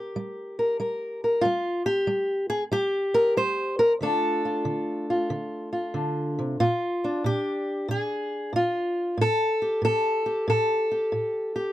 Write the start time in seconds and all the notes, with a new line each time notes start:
Already playing: G4 A#4
0.16 G3
0.59 A#4
0.80 G3 A#4
1.24 A#4
1.41 G3 F4
1.86 G4
2.07 G3
2.50 G#4
2.72 G3 G4
3.14 A#4
3.37 G3 C5
3.79 A#4
4.01 D3 A3 D4 F4 A4
4.45 F4
4.65 D3
5.10 F4
5.30 D3
5.73 F4
5.94 D3
6.39 C3
6.60 A#2 F4
7.04 D4
7.24 A#2 G4
7.88 A#2 G#4
8.53 A#2 F4
9.17 A2 A4
9.62 G4
9.82 A2 A4
10.26 G4
10.48 A2 A4
10.92 G4
11.12 A2
11.56 G4